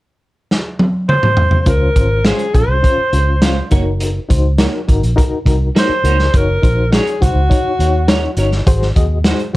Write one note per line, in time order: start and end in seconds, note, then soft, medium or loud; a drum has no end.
0.51 snare medium
0.79 high tom medium
1.09 1.60 C5 loud
1.09 mid tom medium
1.23 mid tom medium
1.37 floor tom medium
1.51 floor tom medium
1.60 1.68 C5 medium
1.66 1.90 C#2 medium
1.66 2.51 C#3 medium
1.66 1.88 C#4 medium
1.66 1.88 F4 medium
1.66 2.28 A#4 loud
1.66 1.89 C5 medium
1.66 kick loud
1.66 closed hi-hat medium
1.96 2.31 G#1 medium
1.96 2.18 C#4 medium
1.96 2.18 F4 medium
1.96 2.18 C5 medium
1.96 kick medium
1.96 closed hi-hat medium
2.25 2.40 G#3 medium
2.25 2.46 C#4 medium
2.25 2.40 C#4 medium
2.25 2.47 F4 medium
2.25 2.40 F4 medium
2.25 2.56 G#4 medium
2.25 2.47 C5 medium
2.25 2.40 C5 medium
2.25 snare loud
2.25 closed hi-hat medium
2.39 closed hi-hat soft
2.54 2.66 A#1 medium
2.54 2.76 C#4 medium
2.54 2.76 F4 medium
2.54 2.76 G#4 medium
2.54 3.72 C5 medium
2.54 kick medium
2.54 closed hi-hat medium
2.68 2.80 C2 medium
2.83 3.05 C#4 medium
2.83 3.05 F4 medium
2.83 3.05 C5 medium
2.83 kick medium
2.83 closed hi-hat medium
2.98 muted fingered electric bass stroke soft
3.13 3.60 C#2 medium
3.13 3.34 C#4 medium
3.13 3.34 F4 medium
3.13 3.35 C5 medium
3.13 closed hi-hat medium
3.41 3.57 G#3 medium
3.41 3.63 C#4 medium
3.41 3.57 C#4 medium
3.41 3.63 F4 medium
3.41 3.57 F4 medium
3.41 3.64 C5 medium
3.41 3.57 C5 medium
3.41 snare medium
3.41 closed hi-hat medium
3.71 4.18 F#1 medium
3.71 3.83 A#3 medium
3.71 4.18 D#4 medium
3.71 3.83 D#4 medium
3.71 4.18 F#4 medium
3.71 3.83 F#4 medium
3.71 4.18 A#4 medium
3.71 3.83 C#5 medium
3.71 kick loud
3.71 closed hi-hat medium
4.00 closed hi-hat medium
4.29 4.65 C#2 medium
4.29 4.51 D#4 medium
4.29 4.51 F#4 medium
4.29 4.51 C5 medium
4.29 kick medium
4.29 closed hi-hat medium
4.58 4.73 A#3 medium
4.58 4.80 D#4 medium
4.58 4.73 D#4 medium
4.58 4.80 F#4 medium
4.58 4.74 F#4 medium
4.58 4.80 A#4 medium
4.58 4.74 C#5 medium
4.58 snare loud
4.58 closed hi-hat medium
4.88 5.00 G#1 medium
4.88 5.09 D#4 medium
4.88 5.09 F#4 medium
4.88 5.10 A#4 medium
4.88 kick medium
4.88 closed hi-hat medium
5.02 5.14 A#1 medium
5.02 closed hi-hat soft
5.16 5.38 D#4 loud
5.16 5.38 F#4 medium
5.16 5.39 A#4 loud
5.16 kick medium
5.16 closed hi-hat medium
5.31 muted fingered electric bass stroke soft
5.45 5.69 C2 medium
5.45 5.67 D#4 medium
5.45 5.68 F#4 medium
5.45 5.68 A#4 medium
5.45 kick medium
5.45 closed hi-hat medium
5.75 5.90 A#3 medium
5.75 5.90 D#4 medium
5.75 5.97 D#4 medium
5.75 5.97 F#4 medium
5.75 5.90 F#4 medium
5.75 5.97 A#4 medium
5.75 6.38 C5 loud
5.75 5.90 C#5 medium
5.75 snare medium
5.75 closed hi-hat medium
5.89 muted fingered electric bass stroke soft
6.04 6.27 C#2 medium
6.04 6.16 A#3 medium
6.04 6.26 D#4 medium
6.04 6.16 D#4 medium
6.04 6.26 F#4 medium
6.04 6.16 F#4 medium
6.04 6.26 A#4 medium
6.04 6.17 C#5 medium
6.04 closed hi-hat medium
6.19 snare soft
6.34 6.57 F#1 medium
6.34 6.55 D#4 medium
6.34 6.55 F#4 medium
6.34 6.92 A#4 loud
6.34 6.56 C#5 loud
6.34 kick loud
6.34 closed hi-hat medium
6.62 6.98 A#1 medium
6.62 6.84 D#4 medium
6.62 6.84 F#4 medium
6.62 6.84 C5 medium
6.62 kick medium
6.62 closed hi-hat medium
6.91 7.07 C#4 medium
6.91 7.13 D#4 medium
6.91 7.13 F#4 medium
6.91 7.07 F#4 medium
6.91 7.23 G#4 medium
6.91 7.07 A#4 medium
6.91 7.13 C#5 medium
6.91 7.07 C#5 medium
6.91 snare loud
6.91 closed hi-hat medium
7.07 closed hi-hat soft
7.21 7.33 C2 medium
7.21 7.42 D#4 medium
7.21 7.43 F#4 medium
7.21 8.38 F#4 medium
7.21 7.43 C5 medium
7.21 kick medium
7.21 closed hi-hat medium
7.34 7.47 C#2 medium
7.49 7.71 D#4 medium
7.49 7.71 F#4 medium
7.49 7.71 C#5 medium
7.49 kick medium
7.49 closed hi-hat medium
7.65 muted fingered electric bass stroke soft
7.79 8.26 D#2 medium
7.79 8.01 D#4 medium
7.79 8.01 F#4 medium
7.79 8.01 C#5 medium
7.79 closed hi-hat medium
8.08 8.23 C#4 medium
8.08 8.30 D#4 medium
8.08 8.23 F#4 medium
8.08 8.30 F#4 medium
8.08 8.24 A#4 medium
8.08 8.30 C#5 medium
8.08 8.24 C#5 loud
8.08 snare loud
8.08 closed hi-hat medium
8.37 8.61 G1 medium
8.37 8.49 C#4 medium
8.37 8.59 D#4 medium
8.37 8.49 F#4 medium
8.37 8.59 F#4 medium
8.37 8.49 A#4 medium
8.37 8.50 C#5 medium
8.37 8.60 C#5 medium
8.37 closed hi-hat medium
8.52 snare soft
8.66 8.90 G#1 medium
8.66 9.50 G#2 medium
8.66 8.88 F#4 loud
8.66 8.88 G#4 loud
8.66 8.89 C5 loud
8.66 kick loud
8.66 closed hi-hat medium
8.82 snare soft
8.95 9.31 D#2 medium
8.95 9.17 F#4 medium
8.95 9.17 G#4 medium
8.95 9.18 D#5 medium
8.95 kick medium
8.95 closed hi-hat medium
9.24 9.40 G#3 medium
9.24 9.40 D#4 medium
9.24 9.46 F#4 medium
9.24 9.40 F#4 medium
9.24 9.47 G#4 medium
9.24 9.47 C5 medium
9.24 9.40 C5 medium
9.24 snare loud
9.24 closed hi-hat medium
9.39 closed hi-hat soft
9.54 9.57 F#4 medium